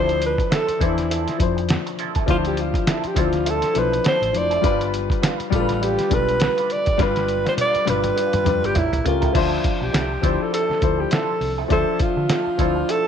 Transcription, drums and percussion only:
0.09 closed hi-hat
0.22 closed hi-hat
0.38 kick, closed hi-hat
0.52 snare, closed hi-hat
0.69 closed hi-hat
0.81 kick, closed hi-hat
0.98 snare, closed hi-hat
1.11 closed hi-hat
1.28 snare, closed hi-hat
1.40 kick, closed hi-hat
1.58 closed hi-hat
1.69 snare, closed hi-hat
1.87 closed hi-hat
1.99 closed hi-hat
2.15 kick, closed hi-hat
2.28 kick, closed hi-hat
2.45 closed hi-hat
2.57 closed hi-hat
2.74 kick, closed hi-hat
2.87 snare, closed hi-hat
3.04 closed hi-hat
3.16 kick, closed hi-hat
3.33 snare, closed hi-hat
3.46 closed hi-hat
3.62 snare, closed hi-hat
3.75 closed hi-hat
3.93 closed hi-hat
4.04 snare, closed hi-hat
4.23 closed hi-hat
4.34 closed hi-hat
4.51 closed hi-hat
4.64 kick, closed hi-hat
4.81 closed hi-hat
4.94 closed hi-hat
5.10 kick, closed hi-hat
5.23 snare, closed hi-hat
5.40 closed hi-hat
5.52 kick, closed hi-hat
5.69 snare, closed hi-hat
5.83 closed hi-hat
5.99 snare, closed hi-hat
6.11 kick, closed hi-hat
6.29 closed hi-hat
6.40 snare, closed hi-hat
6.58 closed hi-hat
6.70 closed hi-hat
6.86 kick, closed hi-hat
6.99 kick, snare, closed hi-hat
7.16 snare, closed hi-hat
7.28 closed hi-hat
7.46 snare, closed hi-hat
7.58 closed hi-hat, high tom
7.75 closed hi-hat
7.87 closed hi-hat, high tom
8.04 closed hi-hat, mid tom
8.18 closed hi-hat
8.33 closed hi-hat, mid tom
8.46 closed hi-hat, mid tom
8.64 closed hi-hat
8.75 closed hi-hat, mid tom
8.93 closed hi-hat, floor tom
9.06 closed hi-hat, floor tom
9.22 closed hi-hat, floor tom
9.35 kick, closed hi-hat, crash
9.64 kick, closed hi-hat
9.94 snare, closed hi-hat
10.23 kick, closed hi-hat
10.54 closed hi-hat
10.71 snare
10.82 kick, closed hi-hat
11.11 snare, closed hi-hat
11.41 open hi-hat
11.70 kick, closed hi-hat
11.99 kick, closed hi-hat
12.29 snare, closed hi-hat
12.59 kick, closed hi-hat
12.89 closed hi-hat

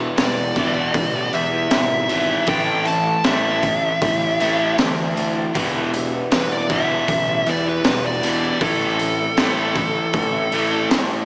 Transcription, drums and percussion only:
0.18 snare, open hi-hat
0.56 kick, open hi-hat
0.94 kick, open hi-hat
1.33 open hi-hat
1.71 snare, open hi-hat
2.09 open hi-hat
2.47 kick, open hi-hat
2.85 open hi-hat
3.24 snare, open hi-hat
3.63 kick, open hi-hat
4.02 kick, open hi-hat
4.40 open hi-hat
4.78 snare, open hi-hat
5.17 open hi-hat
5.55 kick, open hi-hat
5.94 open hi-hat
6.32 snare, open hi-hat
6.69 kick, open hi-hat
7.08 kick, open hi-hat
7.46 open hi-hat
7.84 snare, open hi-hat
8.23 open hi-hat
8.61 kick, open hi-hat
8.99 open hi-hat
9.37 snare, open hi-hat
9.76 kick, open hi-hat
10.13 kick, open hi-hat
10.52 open hi-hat
10.91 snare, open hi-hat

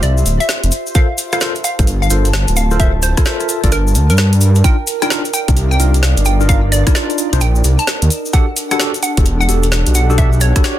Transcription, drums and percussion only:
0.03 closed hi-hat, cabasa
0.18 cabasa
0.26 open hi-hat, cabasa
0.41 closed hi-hat, cabasa
0.49 snare, cabasa
0.64 closed hi-hat, cabasa
0.72 open hi-hat, cabasa
0.87 cabasa
0.95 kick, closed hi-hat, cabasa
1.18 open hi-hat, cabasa
1.32 cross-stick, closed hi-hat, cabasa
1.41 snare, cabasa
1.55 closed hi-hat, cabasa
1.64 open hi-hat, cabasa
1.79 kick, closed hi-hat, cabasa
1.87 closed hi-hat, cabasa
2.03 cabasa
2.10 open hi-hat, cabasa
2.25 closed hi-hat, cabasa
2.33 snare, cabasa
2.48 closed hi-hat, cabasa
2.56 open hi-hat, cabasa
2.71 cabasa
2.80 kick, closed hi-hat, cabasa
3.02 open hi-hat, cabasa
3.17 kick, cross-stick, closed hi-hat, cabasa
3.25 snare, cabasa
3.40 cross-stick, closed hi-hat, cabasa
3.49 open hi-hat, cabasa
3.64 kick, closed hi-hat, cabasa
3.72 closed hi-hat, cabasa
3.87 cabasa
3.95 open hi-hat, cabasa
4.10 closed hi-hat, cabasa
4.17 snare, cabasa
4.33 closed hi-hat, cabasa
4.41 open hi-hat, cabasa
4.55 closed hi-hat, cabasa
4.64 kick, closed hi-hat, cabasa
4.87 open hi-hat, cabasa
5.02 cross-stick, closed hi-hat, cabasa
5.10 snare, cabasa
5.25 closed hi-hat, cabasa
5.34 open hi-hat, cabasa
5.48 kick, closed hi-hat, cabasa
5.57 closed hi-hat, cabasa
5.72 cabasa
5.80 open hi-hat, cabasa
5.94 closed hi-hat, cabasa
6.03 snare, cabasa
6.17 closed hi-hat, cabasa
6.25 open hi-hat, cabasa
6.41 cabasa
6.49 kick, closed hi-hat, cabasa
6.72 open hi-hat, cabasa
6.87 kick, cross-stick, closed hi-hat, cabasa
6.95 snare, cabasa
7.10 closed hi-hat, cabasa
7.18 open hi-hat, cabasa
7.33 closed hi-hat, cabasa
7.41 closed hi-hat, cabasa
7.55 cabasa
7.64 open hi-hat, cabasa
7.79 closed hi-hat, cabasa
7.87 snare, cabasa
8.02 closed hi-hat, cabasa
8.10 open hi-hat, cabasa
8.25 cabasa
8.33 kick, closed hi-hat, cabasa
8.57 open hi-hat, cabasa
8.71 cross-stick, closed hi-hat, cabasa
8.80 snare, cabasa
8.94 closed hi-hat, cabasa
9.03 open hi-hat, cabasa
9.17 kick, closed hi-hat, cabasa
9.26 closed hi-hat, cabasa
9.41 cabasa
9.49 open hi-hat, cabasa
9.63 closed hi-hat, cabasa
9.72 snare, cabasa
9.86 closed hi-hat, cabasa
9.95 open hi-hat, cabasa
10.10 cabasa
10.18 kick, closed hi-hat, cabasa
10.33 cabasa
10.41 open hi-hat, cabasa
10.56 kick, cross-stick, closed hi-hat, cabasa
10.64 snare, cabasa

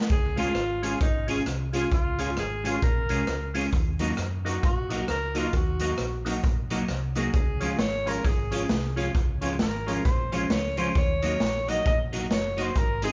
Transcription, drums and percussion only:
0.01 snare
0.10 kick, closed hi-hat
0.37 closed hi-hat
0.55 cross-stick, closed hi-hat
0.83 closed hi-hat
1.01 kick, closed hi-hat
1.28 closed hi-hat
1.46 cross-stick, closed hi-hat
1.73 closed hi-hat
1.91 kick, closed hi-hat
2.19 closed hi-hat
2.37 cross-stick, closed hi-hat
2.65 closed hi-hat
2.82 kick, closed hi-hat
3.09 closed hi-hat
3.27 cross-stick, closed hi-hat
3.55 closed hi-hat
3.72 kick, closed hi-hat
3.99 closed hi-hat
4.17 cross-stick, closed hi-hat
4.46 closed hi-hat
4.63 kick, closed hi-hat
4.90 closed hi-hat
5.08 cross-stick, closed hi-hat
5.35 closed hi-hat
5.53 kick, closed hi-hat
5.80 closed hi-hat
5.98 cross-stick, closed hi-hat
6.26 closed hi-hat
6.44 kick, closed hi-hat
6.70 closed hi-hat
6.88 cross-stick, closed hi-hat
7.15 closed hi-hat
7.34 kick, closed hi-hat
7.61 closed hi-hat
7.79 snare, closed hi-hat
8.07 closed hi-hat
8.25 kick, closed hi-hat
8.52 closed hi-hat
8.69 snare, closed hi-hat
8.97 closed hi-hat
9.15 kick, closed hi-hat
9.42 closed hi-hat
9.59 snare, closed hi-hat
9.88 closed hi-hat
10.05 kick, closed hi-hat
10.32 closed hi-hat
10.50 snare, closed hi-hat
10.77 closed hi-hat
10.95 kick, closed hi-hat
11.22 closed hi-hat
11.40 snare, closed hi-hat
11.69 closed hi-hat
11.86 kick, closed hi-hat
12.13 closed hi-hat
12.31 snare, closed hi-hat
12.58 closed hi-hat
12.75 kick, closed hi-hat
13.02 closed hi-hat

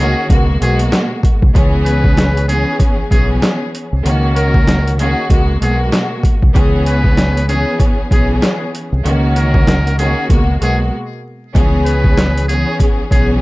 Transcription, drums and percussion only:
0.30 kick, closed hi-hat
0.62 closed hi-hat
0.79 closed hi-hat
0.92 snare, closed hi-hat
1.23 kick, closed hi-hat
1.42 kick
1.55 kick, closed hi-hat
1.86 closed hi-hat
2.04 kick
2.17 snare, closed hi-hat
2.37 closed hi-hat
2.49 closed hi-hat
2.80 kick, closed hi-hat
3.11 kick, closed hi-hat
3.42 snare, closed hi-hat
3.75 closed hi-hat
4.06 closed hi-hat
4.36 closed hi-hat
4.54 kick
4.67 snare, closed hi-hat
4.88 closed hi-hat
4.99 closed hi-hat
5.30 kick, closed hi-hat
5.62 closed hi-hat
5.92 snare, closed hi-hat
6.24 kick, closed hi-hat
6.42 kick
6.55 kick, closed hi-hat
6.86 closed hi-hat
7.04 kick
7.17 snare, closed hi-hat
7.37 closed hi-hat
7.49 closed hi-hat
7.80 kick, closed hi-hat
8.11 kick, closed hi-hat
8.42 snare, closed hi-hat
8.75 closed hi-hat
9.06 closed hi-hat
9.36 closed hi-hat
9.54 kick
9.67 snare, closed hi-hat
9.87 closed hi-hat
9.99 closed hi-hat
10.30 kick, closed hi-hat
10.62 closed hi-hat
11.55 kick, closed hi-hat
11.86 closed hi-hat
12.04 kick
12.18 snare, closed hi-hat
12.37 closed hi-hat
12.49 closed hi-hat
12.80 kick, closed hi-hat
13.11 kick, closed hi-hat

